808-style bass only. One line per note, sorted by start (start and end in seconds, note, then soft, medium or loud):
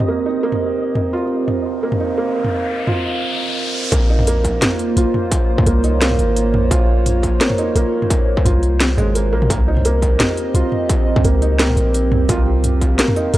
3.92 4.61 A#1 loud
4.97 5.05 A#1 loud
5.66 6.18 C2 loud
6.19 6.55 G#1 medium
6.54 6.70 A#1 loud
6.71 7.40 A#1 loud
7.75 7.84 A#1 loud
8.45 8.97 C2 loud
8.98 9.34 G#1 medium
9.32 9.49 A#1 loud
9.50 10.19 C2 loud
10.54 10.63 C2 loud
11.24 11.76 C#2 loud
11.76 12.13 A#1 medium
12.12 12.28 C2 loud
12.29 12.98 C2 loud
13.34 13.38 C2 loud